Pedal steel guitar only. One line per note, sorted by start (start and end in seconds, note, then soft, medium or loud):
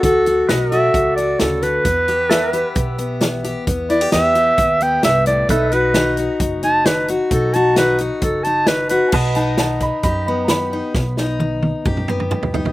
0.49 0.74 B4 medium
0.49 0.70 D#5 medium
0.70 1.84 A4 medium
0.70 1.84 D5 medium
2.30 2.55 A4 medium
2.30 5.46 E5 medium
2.55 5.45 B4 medium
5.50 9.10 B4 medium
5.50 5.72 E5 medium
5.72 9.11 D#5 medium
9.14 12.72 B4 medium
9.14 12.72 D#5 medium